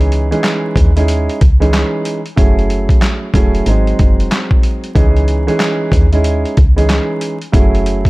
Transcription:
Already playing: fm bass C#2, grand piano E3 G#3 C#4 D#4 G#4
0.01 closed hi-hat
0.12 closed hi-hat
0.31 grand piano E3 G#3 C#4 D#4 G#4, closed hi-hat
0.44 snare, clap, closed hi-hat
0.76 fm bass D#2, kick, closed hi-hat
0.96 grand piano G#3 C#4 D#4 E4 G#4, closed hi-hat
1.08 closed hi-hat
1.29 closed hi-hat
1.41 fm bass C#2, kick, closed hi-hat
1.60 grand piano E3 G#3 C#4 D#4 G#4, closed hi-hat
1.74 snare, clap, closed hi-hat
2.05 closed hi-hat
2.26 closed hi-hat
2.36 fm bass F#1, grand piano F#3 A3 C#4 E4 G#4, kick, closed hi-hat
2.59 closed hi-hat
2.70 closed hi-hat
2.89 kick, closed hi-hat
3.02 snare, clap, closed hi-hat
3.34 fm bass E1, grand piano F#3 A3 C#4 E4 G#4, kick, closed hi-hat
3.55 closed hi-hat
3.66 fm bass G#1, grand piano F#3 G#3 C4 D#4 G#4, closed hi-hat
3.87 closed hi-hat
3.99 fm bass F#1, kick, closed hi-hat
4.20 closed hi-hat
4.32 snare, clap, closed hi-hat
4.51 kick
4.63 closed hi-hat
4.84 closed hi-hat
4.95 fm bass C#2, grand piano E3 G#3 C#4 D#4 G#4, kick, closed hi-hat
5.17 closed hi-hat
5.28 closed hi-hat
5.47 grand piano E3 G#3 C#4 D#4 G#4, closed hi-hat
5.60 snare, clap, closed hi-hat
5.92 fm bass D#2, kick, closed hi-hat
6.12 grand piano G#3 C#4 D#4 E4 G#4, closed hi-hat
6.24 closed hi-hat
6.45 closed hi-hat
6.57 fm bass C#2, kick, closed hi-hat
6.76 grand piano E3 G#3 C#4 D#4 G#4, closed hi-hat
6.89 snare, clap, closed hi-hat
7.21 closed hi-hat
7.42 closed hi-hat
7.52 fm bass F#1, grand piano F#3 A3 C#4 E4 G#4, kick, closed hi-hat
7.75 closed hi-hat
7.86 closed hi-hat
8.05 kick, closed hi-hat

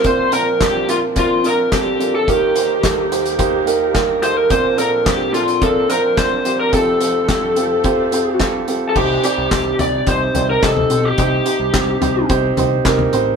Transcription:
Already playing: string section F3 C4
0.04 grand piano A#1 A#2 C4 D4 F4 A#4, string section A#2 D4 A#4, lead electric guitar C5, kick, closed hi-hat
0.32 grand piano C4 D4 F4 A#4, lead electric guitar A#4, closed hi-hat
0.61 grand piano C4 D4 F4 A#4, lead electric guitar G4, kick, snare, clap, closed hi-hat
0.88 grand piano C4 D4 F4 A#4, lead electric guitar F4, closed hi-hat
1.15 grand piano C4 D4 F4 A#4, lead electric guitar F4, kick, closed hi-hat
1.43 grand piano C4 D4 F4 A#4, lead electric guitar A#4, closed hi-hat
1.71 grand piano C4 D4 F4 A4, lead electric guitar G4, kick, snare, clap, closed hi-hat
1.99 grand piano C4 D4 F4 A4, closed hi-hat
2.15 lead electric guitar A4
2.27 string section D#2 D#3 A#3 G4, grand piano D#2 D#3 A#3 D#4 G4 A#4, lead electric guitar G4, kick, closed hi-hat
2.56 grand piano A#3 D#4 G4 C5, closed hi-hat
2.83 grand piano A#3 D#4 G4 A4, kick, snare, clap, closed hi-hat
3.11 grand piano A#3 D#4 G4 C5, closed hi-hat
3.25 closed hi-hat
3.38 grand piano A#3 D#4 G4 C5, kick, closed hi-hat
3.66 grand piano A#3 D#4 G4 A#4, closed hi-hat
3.93 grand piano A#3 D#4 G4 A#4, kick, snare, clap, closed hi-hat
4.22 grand piano A#3 D#4 G4 A4, lead electric guitar C5, closed hi-hat
4.37 lead electric guitar A#4
4.50 grand piano A#1 A#2 C4 D4 F4 A#4, string section A#2 F3 C4 D4, lead electric guitar C5, kick, closed hi-hat
4.78 grand piano C4 D4 F4 A4, lead electric guitar A#4, closed hi-hat
5.05 grand piano C4 D4 F4 C5, lead electric guitar G4, kick, snare, clap, closed hi-hat
5.33 grand piano C4 D4 F4 A4, lead electric guitar F4, closed hi-hat
5.48 closed hi-hat
5.61 grand piano C4 D4 F4 A#4, lead electric guitar A4, kick, closed hi-hat
5.89 grand piano C4 D4 F4 C5, lead electric guitar A#4, closed hi-hat
6.17 grand piano C4 D4 F4 A#4, lead electric guitar C5, kick, snare, clap, closed hi-hat
6.45 grand piano C4 D4 F4 G4, closed hi-hat
6.60 lead electric guitar A#4
6.73 grand piano F1 F2 C4 F4 G4 A4, string section F2 G4 A4, lead electric guitar A4, kick, closed hi-hat
7.00 grand piano C4 F4 G4 A4, closed hi-hat
7.29 grand piano C4 F4 G4 A4, kick, snare, clap, closed hi-hat
7.56 grand piano C4 F4 G4 A4, closed hi-hat
7.84 grand piano C4 F4 G4 C5, kick, closed hi-hat
8.12 grand piano C4 F4 G4 C5, closed hi-hat
8.40 grand piano C4 F4 G4 A4, kick, snare, clap, closed hi-hat
8.68 grand piano C4 F4 G4 A4, closed hi-hat
8.89 lead electric guitar A4
8.95 analog synth bass C2, grand piano C3 C4 D#4 G4 C5, lead electric guitar G4, kick, crash
9.23 grand piano C4 D#4 G4 D5, lead electric guitar G4, closed hi-hat
9.38 analog synth bass C2
9.51 analog synth bass C2, grand piano C4 D#4 G4 C5, kick, snare, clap, closed hi-hat
9.79 analog synth bass C2, grand piano C4 D#4 G4 C5, lead electric guitar D5, closed hi-hat, floor tom
10.07 analog synth bass C2, grand piano C4 D#4 G4 C5, lead electric guitar C5, kick, closed hi-hat
10.34 analog synth bass C2, grand piano C4 D#4 G4 D5, closed hi-hat, floor tom
10.50 lead electric guitar A#4
10.63 analog synth bass C2, grand piano C4 D#4 G4 D#5, lead electric guitar A4, kick, snare, clap, closed hi-hat
10.77 floor tom
10.90 analog synth bass B1, grand piano C4 D#4 G4 C5, closed hi-hat
11.05 lead electric guitar G4
11.18 analog synth bass C2, grand piano C3 C4 D#4 G4 C5, lead electric guitar G4, kick, closed hi-hat
11.45 grand piano C4 D#4 G4 C5, closed hi-hat
11.60 analog synth bass C2
11.74 analog synth bass C2, grand piano C4 D#4 G4 C5, kick, snare, clap, closed hi-hat
12.01 analog synth bass C2, grand piano C4 D#4 G4 C5, closed hi-hat, floor tom
12.29 analog synth bass C2, grand piano C4 D#4 G4 C5, kick, closed hi-hat
12.57 analog synth bass C2, grand piano C4 D#4 G4 C5, closed hi-hat, floor tom
12.85 analog synth bass C2, grand piano C4 D#4 G4 A#4, kick, snare, clap, closed hi-hat
12.99 floor tom
13.13 analog synth bass A1, grand piano C4 D#4 G4 C5, closed hi-hat

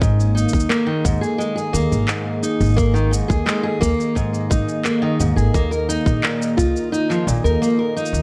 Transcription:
Already playing: analog synth pad D#3
0.01 upright bass G#1, steel-string acoustic guitar G#2, kick, shaker
0.11 analog synth pad A#3
0.20 shaker
0.35 steel-string acoustic guitar D#4, shaker
0.49 shaker
0.53 upright bass D#2, kick, shaker
0.60 shaker
0.69 steel-string acoustic guitar A#3, clap, shaker
0.77 analog synth pad G#4 D#5
0.86 steel-string acoustic guitar D#3
1.04 upright bass D#2, steel-string acoustic guitar G#2, kick, shaker
1.21 steel-string acoustic guitar G#4, shaker
1.38 steel-string acoustic guitar G#3, shaker
1.56 steel-string acoustic guitar G#4, shaker
1.73 upright bass D#2, steel-string acoustic guitar A#3, shaker
1.92 upright bass G#1, shaker
2.08 steel-string acoustic guitar G#2, clap, shaker
2.43 steel-string acoustic guitar D#4, shaker
2.61 upright bass G#1, shaker
2.63 shaker
2.66 shaker
2.71 shaker
2.74 steel-string acoustic guitar A#3, shaker
2.77 kick, shaker
2.79 shaker
2.94 steel-string acoustic guitar D#3, shaker
3.11 steel-string acoustic guitar G#2, shaker
3.28 upright bass D#2, steel-string acoustic guitar G#4, kick, shaker
3.46 steel-string acoustic guitar G#3, clap, shaker
3.63 steel-string acoustic guitar G#4
3.81 upright bass D#2, steel-string acoustic guitar A#3, kick, shaker
4.00 shaker
4.15 steel-string acoustic guitar G#2, kick, shaker
4.34 shaker
4.50 upright bass G#1, steel-string acoustic guitar D#4, kick, shaker
4.69 shaker
4.85 steel-string acoustic guitar A#3, clap, shaker
5.02 steel-string acoustic guitar D#3
5.19 upright bass D#2, steel-string acoustic guitar G#2, shaker
5.36 upright bass G#1, steel-string acoustic guitar G#4, shaker
5.54 upright bass D#2, steel-string acoustic guitar A#3, kick, shaker
5.71 steel-string acoustic guitar A#4, shaker
5.89 steel-string acoustic guitar D#4, shaker
6.06 upright bass A#1, kick, shaker
6.23 steel-string acoustic guitar A#2, clap
6.40 analog synth pad F4, shaker
6.57 upright bass C#2, steel-string acoustic guitar F4, kick, shaker
6.76 shaker
6.92 steel-string acoustic guitar D#4, shaker
7.10 steel-string acoustic guitar F3, clap, shaker
7.27 upright bass A#1, steel-string acoustic guitar A#2, shaker
7.44 upright bass D#2, steel-string acoustic guitar A#4, shaker
7.62 steel-string acoustic guitar A#3, shaker
7.79 steel-string acoustic guitar A#4
7.96 steel-string acoustic guitar D#4, shaker
8.06 shaker
8.13 upright bass D#2, shaker

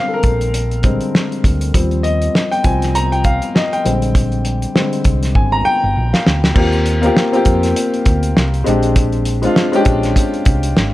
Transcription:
Already playing: grand piano D3 G3 G#3 C4 F5 G5
0.09 grand piano A4
0.14 grand piano A#4
0.23 fingered electric bass A#1, kick, closed hi-hat
0.41 closed hi-hat
0.54 closed hi-hat
0.71 closed hi-hat
0.83 grand piano D3 G3 G#3 C4, kick, closed hi-hat
1.01 closed hi-hat
1.15 snare
1.32 closed hi-hat
1.44 fingered electric bass D2, kick, closed hi-hat
1.61 closed hi-hat
1.74 fingered electric bass D#2, grand piano F3 G3 C4, kick, closed hi-hat
1.91 closed hi-hat
2.03 grand piano D#5, closed hi-hat
2.22 closed hi-hat
2.35 snare
2.51 grand piano G5, closed hi-hat
2.64 fingered electric bass C2, grand piano F3 G3 C4 G#5, kick, closed hi-hat
2.82 snare, closed hi-hat
2.95 grand piano A#5, closed hi-hat
3.12 grand piano G5, closed hi-hat
3.24 grand piano F5, kick, closed hi-hat
3.42 closed hi-hat
3.55 grand piano D#5, snare
3.73 grand piano G5, closed hi-hat
3.85 fingered electric bass A#1, grand piano D3 G3 G#3 C4, closed hi-hat
4.02 closed hi-hat
4.15 kick, closed hi-hat
4.32 closed hi-hat
4.45 closed hi-hat
4.62 closed hi-hat
4.75 grand piano D3 G3 G#3 C4, snare
4.93 closed hi-hat
5.04 fingered electric bass C2, kick, closed hi-hat
5.23 snare, closed hi-hat
5.35 fingered electric bass G#1, grand piano G#5, kick
5.52 grand piano A#5
5.65 grand piano G5
5.84 fingered electric bass G1
5.97 fingered electric bass A#1
6.13 grand piano F5, snare
6.27 fingered electric bass D2, snare
6.44 snare
6.54 fingered electric bass D#2, grand piano A#3 C4 F4 G4, kick, crash
6.72 closed hi-hat
6.86 closed hi-hat
7.02 grand piano A#3 C4 F4 G4, closed hi-hat
7.17 snare
7.32 grand piano A#3 C4 F4 G4, closed hi-hat
7.45 fingered electric bass F2, kick, closed hi-hat
7.63 snare, closed hi-hat
7.76 closed hi-hat
7.94 closed hi-hat
8.05 fingered electric bass D2, kick, closed hi-hat
8.23 closed hi-hat
8.37 fingered electric bass C2, snare
8.54 closed hi-hat
8.64 fingered electric bass A#1, grand piano G#3 C4 D4 G4, closed hi-hat
8.83 closed hi-hat
8.96 kick, closed hi-hat
9.12 closed hi-hat
9.25 closed hi-hat
9.42 grand piano G#3 C4 D4 F4, closed hi-hat
9.56 snare
9.72 grand piano G#3 C4 C#4 G4, closed hi-hat
9.81 grand piano D4
9.85 fingered electric bass A#1, kick, closed hi-hat
10.03 snare, closed hi-hat
10.16 kick, closed hi-hat
10.34 closed hi-hat
10.45 fingered electric bass C2, kick, closed hi-hat
10.63 closed hi-hat
10.77 fingered electric bass G#1, snare

